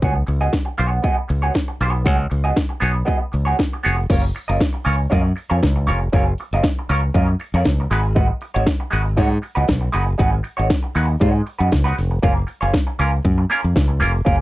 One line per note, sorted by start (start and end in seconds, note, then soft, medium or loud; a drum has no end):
0.02 0.22 C#2 medium
0.02 0.17 B3 medium
0.02 0.16 F#4 medium
0.02 0.15 G#4 medium
0.02 0.14 C#5 medium
0.02 kick loud
0.02 closed hi-hat medium
0.15 muted clean electric guitar stroke soft
0.27 0.48 C#2 medium
0.27 muted clean electric guitar stroke soft
0.27 open hi-hat medium
0.41 0.52 B3 soft
0.41 0.51 F#4 soft
0.41 0.51 G#4 medium
0.41 0.51 D#5 medium
0.53 kick loud
0.53 snare loud
0.53 closed hi-hat medium
0.65 muted clean electric guitar stroke soft
0.78 0.99 B1 medium
0.78 0.99 B3 medium
0.78 0.92 F#4 medium
0.78 0.92 G#4 medium
0.78 0.91 C#5 medium
0.78 open hi-hat medium
0.92 muted clean electric guitar stroke soft
1.02 1.18 B3 medium
1.02 1.17 F#4 medium
1.02 1.17 G#4 medium
1.02 1.17 D#5 medium
1.02 kick loud
1.02 closed hi-hat medium
1.18 muted clean electric guitar stroke soft
1.28 1.49 C#2 medium
1.28 muted clean electric guitar stroke soft
1.28 open hi-hat medium
1.42 1.53 B3 soft
1.42 1.53 F#4 medium
1.42 1.53 G#4 medium
1.42 1.53 C#5 medium
1.54 muted clean electric guitar stroke soft
1.54 kick medium
1.54 snare loud
1.54 closed hi-hat medium
1.68 muted clean electric guitar stroke soft
1.81 2.06 B1 loud
1.81 2.01 B3 medium
1.81 1.94 F#4 medium
1.81 1.94 G#4 medium
1.81 1.92 C#5 medium
1.81 open hi-hat medium
1.94 muted clean electric guitar stroke soft
2.04 2.26 C#2 loud
2.04 2.20 B3 medium
2.04 2.18 F#4 medium
2.04 2.18 G#4 medium
2.04 2.17 C#5 medium
2.04 kick loud
2.04 closed hi-hat medium
2.18 muted clean electric guitar stroke soft
2.30 2.51 C#2 medium
2.30 muted clean electric guitar stroke soft
2.30 open hi-hat medium
2.44 2.55 B3 medium
2.44 2.55 F#4 medium
2.44 2.55 G#4 medium
2.44 2.54 D#5 medium
2.56 kick loud
2.56 snare loud
2.56 closed hi-hat medium
2.69 muted clean electric guitar stroke soft
2.80 3.02 B1 loud
2.80 2.96 B3 loud
2.80 2.94 F#4 medium
2.80 2.93 G#4 medium
2.80 2.93 C#5 medium
2.80 open hi-hat medium
2.94 muted clean electric guitar stroke soft
3.05 3.21 B3 loud
3.05 3.20 F#4 loud
3.05 3.19 G#4 medium
3.05 3.19 D#5 loud
3.05 kick loud
3.05 closed hi-hat medium
3.19 muted clean electric guitar stroke medium
3.32 3.53 C#2 medium
3.32 muted clean electric guitar stroke soft
3.32 open hi-hat medium
3.45 3.57 B3 medium
3.45 3.57 F#4 medium
3.45 3.57 G#4 medium
3.45 3.56 C#5 medium
3.58 muted clean electric guitar stroke soft
3.58 kick medium
3.58 snare loud
3.58 closed hi-hat medium
3.73 muted clean electric guitar stroke soft
3.83 4.05 F1 medium
3.83 3.98 B3 medium
3.83 3.98 F#4 medium
3.83 3.97 G#4 medium
3.83 3.97 C#5 medium
3.83 snare soft
3.83 open hi-hat medium
3.98 muted clean electric guitar stroke soft
4.10 4.30 F#1 loud
4.10 4.24 C#4 medium
4.10 4.24 F4 medium
4.10 4.24 A#4 medium
4.10 4.23 C#5 loud
4.10 kick loud
4.10 closed hi-hat medium
4.10 crash loud
4.24 muted clean electric guitar stroke soft
4.35 muted clean electric guitar stroke soft
4.35 open hi-hat medium
4.48 4.58 F#1 medium
4.48 4.59 C#4 soft
4.48 4.59 F4 medium
4.48 4.59 A#4 medium
4.48 4.58 D#5 medium
4.60 kick loud
4.60 snare loud
4.60 closed hi-hat medium
4.73 muted clean electric guitar stroke soft
4.85 5.06 C#2 medium
4.85 5.00 C#4 medium
4.85 4.99 F4 medium
4.85 4.98 A#4 medium
4.85 4.97 C#5 medium
4.85 open hi-hat medium
4.98 muted clean electric guitar stroke soft
5.10 5.31 F#2 loud
5.10 5.25 C#4 medium
5.10 5.24 F4 medium
5.10 5.23 A#4 loud
5.10 5.23 D#5 loud
5.10 kick loud
5.10 closed hi-hat medium
5.24 muted clean electric guitar stroke soft
5.36 muted clean electric guitar stroke soft
5.36 open hi-hat medium
5.50 5.60 F2 medium
5.50 5.60 C#4 medium
5.50 5.60 F4 medium
5.50 5.60 A#4 medium
5.50 5.60 C#5 medium
5.62 5.90 C#2 medium
5.62 muted clean electric guitar stroke soft
5.62 kick medium
5.62 snare loud
5.62 closed hi-hat medium
5.76 muted clean electric guitar stroke medium
5.87 6.07 F1 loud
5.87 6.01 C#4 medium
5.87 6.01 F4 medium
5.87 6.01 A#4 medium
5.87 6.00 C#5 loud
5.87 open hi-hat medium
6.01 muted clean electric guitar stroke soft
6.13 6.33 F#1 loud
6.13 6.27 C#4 medium
6.13 6.27 F4 medium
6.13 6.26 A#4 medium
6.13 6.26 C#5 medium
6.13 kick loud
6.13 closed hi-hat medium
6.27 muted clean electric guitar stroke soft
6.38 muted clean electric guitar stroke soft
6.38 open hi-hat medium
6.53 6.61 F#1 loud
6.53 6.64 C#4 medium
6.53 6.63 F4 medium
6.53 6.63 A#4 medium
6.53 6.63 D#5 medium
6.63 kick loud
6.63 snare loud
6.63 closed hi-hat medium
6.79 muted clean electric guitar stroke soft
6.89 7.09 C#2 medium
6.89 7.03 C#4 loud
6.89 7.03 F4 loud
6.89 7.03 A#4 loud
6.89 7.02 C#5 medium
6.89 open hi-hat medium
7.03 muted clean electric guitar stroke soft
7.14 7.34 F#2 loud
7.14 7.29 C#4 loud
7.14 7.29 F4 medium
7.14 7.28 A#4 medium
7.14 7.28 D#5 medium
7.14 kick loud
7.14 closed hi-hat medium
7.29 muted clean electric guitar stroke medium
7.40 muted clean electric guitar stroke soft
7.40 open hi-hat medium
7.54 7.63 F2 loud
7.54 7.65 C#4 medium
7.54 7.64 F4 medium
7.54 7.64 A#4 medium
7.54 7.64 C#5 medium
7.65 7.85 C#2 medium
7.65 muted clean electric guitar stroke soft
7.65 kick medium
7.65 snare loud
7.65 closed hi-hat medium
7.80 muted clean electric guitar stroke medium
7.91 8.30 G#1 loud
7.91 8.05 G#3 loud
7.91 8.04 D#4 loud
7.91 8.03 F#4 medium
7.91 8.02 B4 loud
7.91 open hi-hat medium
8.03 muted clean electric guitar stroke medium
8.15 8.30 G#3 medium
8.15 8.30 D#4 medium
8.15 8.29 F#4 medium
8.15 8.28 B4 loud
8.15 kick loud
8.15 closed hi-hat medium
8.29 muted clean electric guitar stroke soft
8.41 muted clean electric guitar stroke soft
8.41 open hi-hat medium
8.54 8.65 G#1 loud
8.54 8.65 G#3 medium
8.54 8.65 D#4 medium
8.54 8.65 F#4 medium
8.54 8.64 C#5 medium
8.66 kick loud
8.66 snare loud
8.66 closed hi-hat medium
8.80 muted clean electric guitar stroke medium
8.91 9.19 G#1 medium
8.91 9.06 G#3 medium
8.91 9.05 D#4 medium
8.91 9.04 F#4 loud
8.91 9.04 B4 loud
8.91 open hi-hat medium
9.05 muted clean electric guitar stroke soft
9.17 9.37 G#2 loud
9.17 9.31 G#3 medium
9.17 9.31 D#4 loud
9.17 9.30 F#4 loud
9.17 9.31 C#5 loud
9.17 kick loud
9.17 closed hi-hat medium
9.31 muted clean electric guitar stroke soft
9.42 muted clean electric guitar stroke soft
9.42 open hi-hat medium
9.55 9.66 C#2 medium
9.55 9.66 G#3 medium
9.55 9.66 D#4 medium
9.55 9.66 F#4 medium
9.55 9.66 B4 medium
9.67 9.88 B1 medium
9.67 muted clean electric guitar stroke soft
9.67 kick medium
9.67 snare loud
9.67 closed hi-hat medium
9.81 muted clean electric guitar stroke soft
9.92 10.13 F#1 loud
9.92 10.07 G#3 medium
9.92 10.06 D#4 loud
9.92 10.06 F#4 loud
9.92 10.05 B4 loud
9.92 open hi-hat medium
10.06 muted clean electric guitar stroke medium
10.18 10.39 G#1 loud
10.18 10.33 G#3 medium
10.18 10.32 D#4 medium
10.18 10.32 F#4 medium
10.18 10.31 B4 medium
10.18 kick loud
10.18 closed hi-hat medium
10.33 muted clean electric guitar stroke soft
10.43 muted clean electric guitar stroke soft
10.43 open hi-hat medium
10.57 10.68 G#1 loud
10.57 10.68 G#3 medium
10.57 10.68 D#4 medium
10.57 10.68 F#4 medium
10.57 10.67 C#5 medium
10.70 kick loud
10.70 snare loud
10.70 closed hi-hat medium
10.83 muted clean electric guitar stroke soft
10.95 11.15 D#2 medium
10.95 11.09 G#3 medium
10.95 11.09 D#4 loud
10.95 11.08 F#4 medium
10.95 11.07 B4 loud
10.95 open hi-hat medium
11.08 muted clean electric guitar stroke soft
11.20 11.41 G#2 loud
11.20 11.41 G#3 medium
11.20 11.34 D#4 medium
11.20 11.34 F#4 medium
11.20 11.33 C#5 medium
11.20 kick loud
11.20 closed hi-hat medium
11.34 muted clean electric guitar stroke soft
11.46 muted clean electric guitar stroke soft
11.46 open hi-hat medium
11.59 11.69 F#2 medium
11.59 11.70 G#3 medium
11.59 11.70 D#4 medium
11.59 11.69 F#4 medium
11.59 11.69 B4 medium
11.72 11.92 C#2 medium
11.72 muted clean electric guitar stroke soft
11.72 kick loud
11.72 snare loud
11.72 closed hi-hat medium
11.84 11.96 G#3 medium
11.84 11.96 D#4 medium
11.84 11.97 F#4 medium
11.84 11.97 B4 medium
11.97 12.18 F1 medium
11.97 muted clean electric guitar stroke soft
11.97 snare soft
11.97 open hi-hat medium
12.11 muted clean electric guitar stroke soft
12.23 12.43 F#1 loud
12.23 12.37 A#3 medium
12.23 12.36 C#4 medium
12.23 12.35 F4 loud
12.23 12.34 A#4 loud
12.23 kick loud
12.23 closed hi-hat medium
12.36 muted clean electric guitar stroke medium
12.47 muted clean electric guitar stroke soft
12.47 open hi-hat medium
12.61 12.71 F#1 loud
12.61 12.72 A#3 medium
12.61 12.72 C#4 medium
12.61 12.72 F4 medium
12.61 12.71 C#5 medium
12.74 kick loud
12.74 snare loud
12.74 closed hi-hat medium
12.87 muted clean electric guitar stroke soft
12.99 13.19 C#2 medium
12.99 13.13 A#3 medium
12.99 13.13 C#4 medium
12.99 13.13 F4 medium
12.99 13.12 A#4 loud
12.99 open hi-hat medium
13.13 muted clean electric guitar stroke medium
13.25 13.44 F#2 loud
13.25 kick loud
13.25 closed hi-hat medium
13.38 muted clean electric guitar stroke medium
13.50 13.64 A#3 medium
13.50 13.63 C#4 loud
13.50 13.62 F4 medium
13.50 13.62 A#4 loud
13.50 open hi-hat medium
13.63 13.73 F2 medium
13.63 muted clean electric guitar stroke soft
13.75 14.03 C#2 loud
13.75 muted clean electric guitar stroke soft
13.75 kick loud
13.75 snare loud
13.75 closed hi-hat medium
13.88 muted clean electric guitar stroke soft
14.00 14.20 F1 loud
14.00 14.15 A#3 medium
14.00 14.15 C#4 medium
14.00 14.14 F4 loud
14.00 14.13 A#4 loud
14.00 open hi-hat medium
14.14 muted clean electric guitar stroke soft
14.25 14.41 F#1 loud
14.25 14.40 A#3 medium
14.25 14.39 C#4 medium
14.25 14.38 F4 medium
14.25 14.38 A#4 loud
14.25 kick loud
14.25 closed hi-hat medium